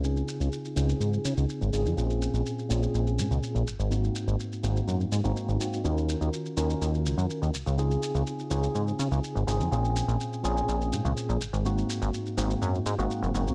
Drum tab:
SH |xxxxxxxxxxxxxxxx|xxxxxxxxxxxxxxxx|xxxxxxxxxxxxxxxx|xxxxxxxxxxxxxxxx|

SH |xxxxxxxxxxxxxxxx|xxxxxxxxxxxxxxxx|xxxxxxxxxxxxxxxx|